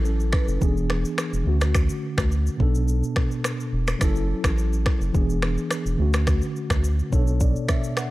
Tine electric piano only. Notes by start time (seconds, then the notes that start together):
Already playing: F#3 C#4 E4 A4
0.05 C#4 A4
0.33 B4
0.48 C#4 A4
0.60 E3 B3 D4 G#4
1.44 D3 A3 C#4
1.49 F#4
2.57 B2 B3 D4
2.62 A4
3.99 F#3 C#4 E4
4.04 A4
5.13 E3 B3 D4 G#4
5.97 D3 A3 C#4
6.02 F#4
7.10 B2 B3 D4 C#5
7.15 A4
7.41 D5
7.69 E5
7.97 F#5